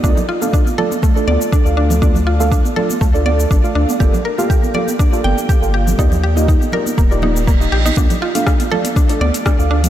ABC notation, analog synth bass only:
X:1
M:4/4
L:1/16
Q:"Swing 16ths" 1/4=121
K:Dphr
V:1 name="Analog synth bass" clef=bass
D,, z8 z D,, z2 D,,3- | D,,4- D,, z3 D,,4 A,,, z D,, z | G,,, z8 z G,,, z2 G,,,3 | E,,4- E,, z3 E,,,6 B,,,2 |
D,, z8 z D,, z2 D,,3 |]